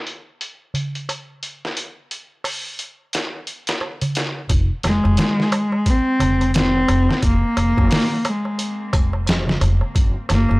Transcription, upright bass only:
0, 0, Header, 1, 2, 480
1, 0, Start_track
1, 0, Tempo, 681818
1, 1245, Time_signature, 4, 2, 24, 8
1, 7460, End_track
2, 0, Start_track
2, 0, Title_t, "Upright bass"
2, 0, Program_c, 0, 32
2, 3166, Note_on_c, 0, 29, 96
2, 3293, Note_off_c, 0, 29, 0
2, 3406, Note_on_c, 0, 29, 86
2, 3532, Note_off_c, 0, 29, 0
2, 3555, Note_on_c, 0, 29, 96
2, 3637, Note_off_c, 0, 29, 0
2, 4370, Note_on_c, 0, 29, 77
2, 4829, Note_off_c, 0, 29, 0
2, 4852, Note_on_c, 0, 29, 89
2, 4975, Note_off_c, 0, 29, 0
2, 5089, Note_on_c, 0, 29, 97
2, 5214, Note_off_c, 0, 29, 0
2, 5329, Note_on_c, 0, 29, 91
2, 5454, Note_off_c, 0, 29, 0
2, 5475, Note_on_c, 0, 29, 104
2, 5557, Note_off_c, 0, 29, 0
2, 6289, Note_on_c, 0, 29, 78
2, 6749, Note_off_c, 0, 29, 0
2, 6767, Note_on_c, 0, 29, 98
2, 6893, Note_off_c, 0, 29, 0
2, 7009, Note_on_c, 0, 30, 98
2, 7134, Note_off_c, 0, 30, 0
2, 7251, Note_on_c, 0, 30, 92
2, 7375, Note_off_c, 0, 30, 0
2, 7397, Note_on_c, 0, 30, 103
2, 7460, Note_off_c, 0, 30, 0
2, 7460, End_track
0, 0, End_of_file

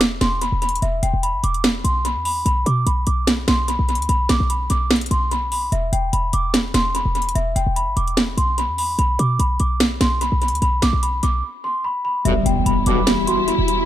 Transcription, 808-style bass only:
0, 0, Header, 1, 2, 480
1, 0, Start_track
1, 0, Key_signature, 1, "minor"
1, 0, Tempo, 408163
1, 969, Time_signature, 4, 2, 24, 8
1, 16292, End_track
2, 0, Start_track
2, 0, Title_t, "808-style bass"
2, 0, Program_c, 0, 38
2, 0, Note_on_c, 0, 28, 102
2, 230, Note_off_c, 0, 28, 0
2, 249, Note_on_c, 0, 28, 106
2, 602, Note_off_c, 0, 28, 0
2, 615, Note_on_c, 0, 28, 104
2, 955, Note_off_c, 0, 28, 0
2, 968, Note_on_c, 0, 28, 116
2, 1199, Note_off_c, 0, 28, 0
2, 1209, Note_on_c, 0, 28, 110
2, 1328, Note_off_c, 0, 28, 0
2, 1335, Note_on_c, 0, 28, 106
2, 1575, Note_on_c, 0, 31, 97
2, 1593, Note_off_c, 0, 28, 0
2, 1683, Note_off_c, 0, 31, 0
2, 1689, Note_on_c, 0, 28, 101
2, 2150, Note_off_c, 0, 28, 0
2, 2169, Note_on_c, 0, 35, 104
2, 2537, Note_on_c, 0, 40, 98
2, 2554, Note_off_c, 0, 35, 0
2, 2872, Note_off_c, 0, 40, 0
2, 2889, Note_on_c, 0, 35, 114
2, 3120, Note_off_c, 0, 35, 0
2, 3130, Note_on_c, 0, 47, 109
2, 3360, Note_off_c, 0, 47, 0
2, 3370, Note_on_c, 0, 35, 111
2, 3600, Note_off_c, 0, 35, 0
2, 3610, Note_on_c, 0, 35, 104
2, 4070, Note_off_c, 0, 35, 0
2, 4090, Note_on_c, 0, 35, 105
2, 4442, Note_off_c, 0, 35, 0
2, 4458, Note_on_c, 0, 35, 105
2, 4698, Note_on_c, 0, 38, 96
2, 4715, Note_off_c, 0, 35, 0
2, 4804, Note_off_c, 0, 38, 0
2, 4810, Note_on_c, 0, 35, 109
2, 5040, Note_off_c, 0, 35, 0
2, 5050, Note_on_c, 0, 35, 106
2, 5172, Note_off_c, 0, 35, 0
2, 5176, Note_on_c, 0, 35, 103
2, 5515, Note_off_c, 0, 35, 0
2, 5529, Note_on_c, 0, 35, 102
2, 5990, Note_off_c, 0, 35, 0
2, 6008, Note_on_c, 0, 35, 107
2, 6700, Note_off_c, 0, 35, 0
2, 6728, Note_on_c, 0, 28, 112
2, 6959, Note_off_c, 0, 28, 0
2, 6969, Note_on_c, 0, 28, 110
2, 7200, Note_off_c, 0, 28, 0
2, 7210, Note_on_c, 0, 28, 107
2, 7440, Note_off_c, 0, 28, 0
2, 7449, Note_on_c, 0, 28, 105
2, 7910, Note_off_c, 0, 28, 0
2, 7929, Note_on_c, 0, 28, 103
2, 8282, Note_off_c, 0, 28, 0
2, 8296, Note_on_c, 0, 28, 101
2, 8635, Note_off_c, 0, 28, 0
2, 8649, Note_on_c, 0, 28, 112
2, 8880, Note_off_c, 0, 28, 0
2, 8889, Note_on_c, 0, 28, 106
2, 9008, Note_off_c, 0, 28, 0
2, 9015, Note_on_c, 0, 28, 111
2, 9255, Note_on_c, 0, 31, 94
2, 9273, Note_off_c, 0, 28, 0
2, 9363, Note_off_c, 0, 31, 0
2, 9369, Note_on_c, 0, 28, 104
2, 9830, Note_off_c, 0, 28, 0
2, 9849, Note_on_c, 0, 35, 106
2, 10216, Note_on_c, 0, 40, 99
2, 10233, Note_off_c, 0, 35, 0
2, 10551, Note_off_c, 0, 40, 0
2, 10568, Note_on_c, 0, 35, 110
2, 10799, Note_off_c, 0, 35, 0
2, 10808, Note_on_c, 0, 47, 108
2, 11039, Note_off_c, 0, 47, 0
2, 11048, Note_on_c, 0, 35, 109
2, 11279, Note_off_c, 0, 35, 0
2, 11289, Note_on_c, 0, 35, 105
2, 11750, Note_off_c, 0, 35, 0
2, 11768, Note_on_c, 0, 35, 104
2, 12121, Note_off_c, 0, 35, 0
2, 12136, Note_on_c, 0, 35, 108
2, 12375, Note_on_c, 0, 38, 101
2, 12393, Note_off_c, 0, 35, 0
2, 12483, Note_off_c, 0, 38, 0
2, 12488, Note_on_c, 0, 35, 114
2, 12719, Note_off_c, 0, 35, 0
2, 12729, Note_on_c, 0, 35, 107
2, 12848, Note_off_c, 0, 35, 0
2, 12855, Note_on_c, 0, 35, 102
2, 13194, Note_off_c, 0, 35, 0
2, 13208, Note_on_c, 0, 35, 105
2, 13439, Note_off_c, 0, 35, 0
2, 14409, Note_on_c, 0, 28, 109
2, 14639, Note_off_c, 0, 28, 0
2, 14649, Note_on_c, 0, 28, 111
2, 14880, Note_off_c, 0, 28, 0
2, 14888, Note_on_c, 0, 28, 115
2, 15119, Note_off_c, 0, 28, 0
2, 15129, Note_on_c, 0, 28, 108
2, 15943, Note_off_c, 0, 28, 0
2, 15977, Note_on_c, 0, 28, 98
2, 16292, Note_off_c, 0, 28, 0
2, 16292, End_track
0, 0, End_of_file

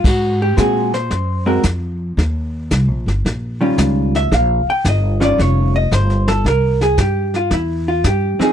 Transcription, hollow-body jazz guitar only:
0, 0, Header, 1, 2, 480
1, 0, Start_track
1, 0, Tempo, 533808
1, 33, Time_signature, 4, 2, 24, 8
1, 7667, End_track
2, 0, Start_track
2, 0, Title_t, "Hollow-body jazz guitar"
2, 0, Program_c, 0, 26
2, 65, Note_on_c, 0, 66, 80
2, 363, Note_off_c, 0, 66, 0
2, 379, Note_on_c, 0, 67, 85
2, 510, Note_on_c, 0, 56, 55
2, 514, Note_off_c, 0, 67, 0
2, 514, Note_on_c, 0, 60, 58
2, 517, Note_on_c, 0, 66, 68
2, 521, Note_on_c, 0, 70, 58
2, 537, Note_off_c, 0, 70, 0
2, 540, Note_on_c, 0, 68, 76
2, 802, Note_off_c, 0, 56, 0
2, 804, Note_off_c, 0, 60, 0
2, 806, Note_off_c, 0, 66, 0
2, 841, Note_off_c, 0, 68, 0
2, 847, Note_on_c, 0, 72, 89
2, 1314, Note_on_c, 0, 56, 59
2, 1316, Note_on_c, 0, 60, 66
2, 1320, Note_off_c, 0, 72, 0
2, 1322, Note_on_c, 0, 66, 66
2, 1324, Note_on_c, 0, 70, 69
2, 1456, Note_off_c, 0, 56, 0
2, 1456, Note_off_c, 0, 60, 0
2, 1459, Note_off_c, 0, 66, 0
2, 1460, Note_off_c, 0, 70, 0
2, 3243, Note_on_c, 0, 51, 61
2, 3249, Note_on_c, 0, 55, 77
2, 3251, Note_on_c, 0, 61, 75
2, 3259, Note_on_c, 0, 65, 72
2, 3740, Note_on_c, 0, 76, 99
2, 3845, Note_off_c, 0, 51, 0
2, 3848, Note_off_c, 0, 55, 0
2, 3849, Note_off_c, 0, 61, 0
2, 3853, Note_off_c, 0, 65, 0
2, 3881, Note_off_c, 0, 76, 0
2, 3905, Note_on_c, 0, 77, 93
2, 4204, Note_off_c, 0, 77, 0
2, 4225, Note_on_c, 0, 79, 105
2, 4363, Note_off_c, 0, 79, 0
2, 4392, Note_on_c, 0, 75, 82
2, 4678, Note_on_c, 0, 55, 63
2, 4679, Note_on_c, 0, 51, 54
2, 4682, Note_on_c, 0, 61, 68
2, 4687, Note_off_c, 0, 75, 0
2, 4688, Note_on_c, 0, 65, 73
2, 4707, Note_on_c, 0, 74, 97
2, 4844, Note_off_c, 0, 74, 0
2, 4870, Note_on_c, 0, 73, 78
2, 5166, Note_off_c, 0, 73, 0
2, 5177, Note_on_c, 0, 75, 102
2, 5283, Note_off_c, 0, 51, 0
2, 5283, Note_off_c, 0, 55, 0
2, 5285, Note_off_c, 0, 61, 0
2, 5287, Note_off_c, 0, 65, 0
2, 5319, Note_off_c, 0, 75, 0
2, 5343, Note_on_c, 0, 72, 93
2, 5643, Note_off_c, 0, 72, 0
2, 5651, Note_on_c, 0, 69, 93
2, 5796, Note_off_c, 0, 69, 0
2, 5825, Note_on_c, 0, 70, 91
2, 6123, Note_off_c, 0, 70, 0
2, 6137, Note_on_c, 0, 68, 87
2, 6279, Note_off_c, 0, 68, 0
2, 6300, Note_on_c, 0, 67, 69
2, 6600, Note_off_c, 0, 67, 0
2, 6620, Note_on_c, 0, 65, 81
2, 6760, Note_off_c, 0, 65, 0
2, 6772, Note_on_c, 0, 64, 77
2, 7076, Note_off_c, 0, 64, 0
2, 7088, Note_on_c, 0, 65, 80
2, 7233, Note_off_c, 0, 65, 0
2, 7257, Note_on_c, 0, 67, 76
2, 7548, Note_on_c, 0, 60, 72
2, 7549, Note_on_c, 0, 53, 65
2, 7554, Note_off_c, 0, 67, 0
2, 7558, Note_on_c, 0, 63, 77
2, 7574, Note_on_c, 0, 68, 92
2, 7667, Note_off_c, 0, 53, 0
2, 7667, Note_off_c, 0, 60, 0
2, 7667, Note_off_c, 0, 63, 0
2, 7667, Note_off_c, 0, 68, 0
2, 7667, End_track
0, 0, End_of_file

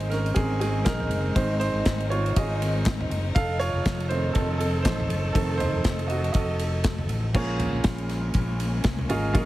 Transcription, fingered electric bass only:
0, 0, Header, 1, 2, 480
1, 0, Start_track
1, 0, Key_signature, -5, "minor"
1, 0, Tempo, 499168
1, 1304, Time_signature, 4, 2, 24, 8
1, 9089, End_track
2, 0, Start_track
2, 0, Title_t, "Fingered electric bass"
2, 0, Program_c, 0, 33
2, 0, Note_on_c, 0, 32, 97
2, 309, Note_off_c, 0, 32, 0
2, 345, Note_on_c, 0, 32, 101
2, 791, Note_off_c, 0, 32, 0
2, 825, Note_on_c, 0, 34, 87
2, 1048, Note_off_c, 0, 34, 0
2, 1056, Note_on_c, 0, 30, 96
2, 1283, Note_off_c, 0, 30, 0
2, 1302, Note_on_c, 0, 32, 106
2, 1651, Note_off_c, 0, 32, 0
2, 1665, Note_on_c, 0, 32, 95
2, 1769, Note_off_c, 0, 32, 0
2, 1786, Note_on_c, 0, 32, 102
2, 2232, Note_off_c, 0, 32, 0
2, 2268, Note_on_c, 0, 32, 97
2, 2951, Note_off_c, 0, 32, 0
2, 2976, Note_on_c, 0, 30, 99
2, 3203, Note_off_c, 0, 30, 0
2, 3224, Note_on_c, 0, 29, 107
2, 3573, Note_off_c, 0, 29, 0
2, 3586, Note_on_c, 0, 29, 93
2, 3690, Note_off_c, 0, 29, 0
2, 3704, Note_on_c, 0, 29, 101
2, 4151, Note_off_c, 0, 29, 0
2, 4184, Note_on_c, 0, 29, 99
2, 4631, Note_off_c, 0, 29, 0
2, 4665, Note_on_c, 0, 33, 91
2, 4888, Note_off_c, 0, 33, 0
2, 4896, Note_on_c, 0, 30, 98
2, 5124, Note_off_c, 0, 30, 0
2, 5144, Note_on_c, 0, 29, 107
2, 5493, Note_off_c, 0, 29, 0
2, 5511, Note_on_c, 0, 29, 91
2, 5613, Note_off_c, 0, 29, 0
2, 5620, Note_on_c, 0, 29, 101
2, 6069, Note_off_c, 0, 29, 0
2, 6103, Note_on_c, 0, 29, 91
2, 6820, Note_off_c, 0, 29, 0
2, 6820, Note_on_c, 0, 33, 97
2, 7046, Note_off_c, 0, 33, 0
2, 7058, Note_on_c, 0, 34, 100
2, 7410, Note_off_c, 0, 34, 0
2, 7430, Note_on_c, 0, 34, 92
2, 7533, Note_off_c, 0, 34, 0
2, 7541, Note_on_c, 0, 34, 107
2, 7990, Note_off_c, 0, 34, 0
2, 8022, Note_on_c, 0, 34, 101
2, 8470, Note_off_c, 0, 34, 0
2, 8503, Note_on_c, 0, 36, 92
2, 8728, Note_off_c, 0, 36, 0
2, 8741, Note_on_c, 0, 32, 95
2, 8966, Note_off_c, 0, 32, 0
2, 8984, Note_on_c, 0, 34, 108
2, 9089, Note_off_c, 0, 34, 0
2, 9089, End_track
0, 0, End_of_file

